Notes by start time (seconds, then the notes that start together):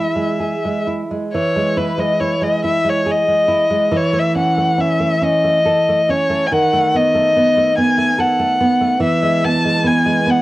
Already playing: E3 E4 E5
0.16 G#3
0.40 G#4
0.65 G#3
0.87 E4
1.11 G#3
1.33 E3 C#5
1.56 G#3
1.77 E4 B4
1.98 G#3 D#5
2.20 E4 C#5
2.41 G#3 D#5
2.64 E4 E5
2.85 G#3
2.89 C#5
3.06 G#4
3.11 D#5
3.28 G#3
3.48 E4
3.70 G#3
3.92 E3
3.96 C#5
4.13 A3
4.19 E5
4.35 C#4 F#5
4.57 A3
4.78 C#4 E5
5.00 A3
5.22 C#4 D#5
5.44 A3
5.65 A4
5.89 A3
6.09 C#4 C#5
6.29 A3
6.46 G#5
6.52 D#3 F#5
6.73 A3
6.94 B3 D#5
7.14 A3
7.36 B3
7.57 A3
7.78 B3 G#5
7.98 A3
8.18 A4 F#5
8.39 A3
8.61 B3
8.81 A3
9.00 E3 E5
9.22 G#3
9.44 B3 A5
9.65 G#3
9.84 B3 G#5
10.06 G#3
10.26 B3 F#5